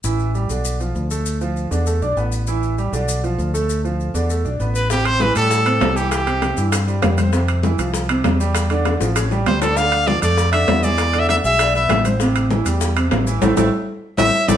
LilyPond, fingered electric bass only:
\new Staff \with { instrumentName = "Fingered electric bass" } { \clef bass \time 4/4 \key a \minor \tempo 4 = 197 a,,4. b,,4. d,4~ | d,4. e,4 b,,8 a,,4~ | a,,4. b,,4. d,4~ | d,4. e,4 b,,8 a,,4~ |
a,,4. a,4. c,4~ | c,4. g,4. f,4~ | f,4. c,4. e,4~ | e,4. a,,4. d,4~ |
d,4. f,4. e,4~ | e,4. b,,4. a,,4~ | a,,4. e,4. a,,4 | a,,8 a,,8 r4. a,,8 r8 a,,8 | }